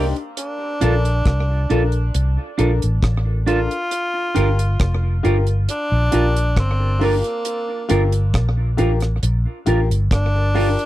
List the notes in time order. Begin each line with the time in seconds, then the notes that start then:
Already playing: C2 A#3 D4 D#4 G4
0.16 closed hi-hat
0.37 D4, closed hi-hat
0.81 A#1 D4 F4 A4 A#4, closed hi-hat
1.05 closed hi-hat
1.26 C2, kick, cross-stick, closed hi-hat
1.70 A#1 D4 F4 A4 A#4, closed hi-hat
1.92 closed hi-hat
2.14 C2, closed hi-hat
2.58 A#1 D4 F4 A4 A#4, closed hi-hat
2.82 A1, closed hi-hat
3.03 A1, kick, cross-stick, closed hi-hat
3.26 A4 A#4
3.46 D4 F4 A4 A#4, closed hi-hat
3.71 closed hi-hat
3.91 closed hi-hat
4.35 G1 D4 F4 G4 A#4, closed hi-hat
4.59 closed hi-hat
4.80 F1, kick, cross-stick, closed hi-hat
5.23 G1 D4 F4 G4 A#4, closed hi-hat
5.47 closed hi-hat
5.69 D4, closed hi-hat
5.92 A#1
6.12 A#1 D4 F4 G4 A#4, closed hi-hat
6.36 closed hi-hat
6.57 G1 C4, kick, cross-stick, closed hi-hat
6.79 G4 A#4
6.99 D4 F4 G4 A#4, open hi-hat
7.04 A#3
7.24 closed hi-hat
7.45 closed hi-hat
7.89 G1 D4 F4 G4 A#4, closed hi-hat
8.12 closed hi-hat
8.34 A#1, kick, cross-stick, closed hi-hat
8.77 A1 D4 F4 G4 A#4, closed hi-hat
9.00 cross-stick, closed hi-hat
9.23 A#1, closed hi-hat
9.66 A1 D4 F4 G4 A#4, closed hi-hat
9.90 G1, closed hi-hat
10.11 G1 D4, kick, cross-stick, closed hi-hat
10.35 G4 A#4
10.55 D4 F4 G4 A#4, open hi-hat
10.79 closed hi-hat